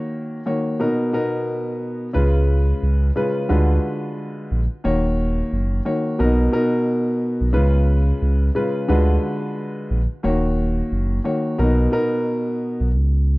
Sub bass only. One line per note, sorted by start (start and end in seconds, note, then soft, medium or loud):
2.15 2.73 C#2 loud
2.83 3.12 C#2 loud
3.50 3.79 D2 loud
4.51 4.68 A#1 medium
4.85 5.43 D#1 loud
5.52 5.81 F#1 loud
6.20 6.49 B1 loud
7.41 7.56 B1 medium
7.55 8.13 C#2 loud
8.22 8.51 C#2 loud
8.90 9.18 D2 loud
9.91 10.07 A#1 loud
10.24 10.82 D#1 loud
10.92 11.21 F#1 loud
11.59 11.88 B1 loud
12.80 12.96 B1 medium
12.94 13.38 C#2 loud